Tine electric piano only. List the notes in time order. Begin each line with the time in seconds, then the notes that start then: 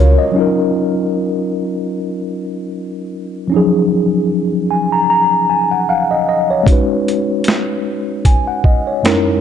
Already playing: G#3 C#4 F4 F#4 A#4 C#5
0.18 D#5
0.31 F#3 C#4
0.36 D#4 F4
0.40 A#4
3.47 F3 C#4
3.52 F3 F#3 D#4
3.56 G#4
4.71 G#5
4.92 A#5
5.10 A#5
5.50 G#5
5.71 F#5
5.89 F5 F#5
6.11 D#5
6.29 D#5
6.50 C#5
6.63 G#3 C#4
6.68 D#4 F#4
6.72 B4
8.26 G#5
8.48 F#5
8.65 D#5
8.87 C#5
9.03 F#2 G#3 C#4 D#4 E4
9.07 A#4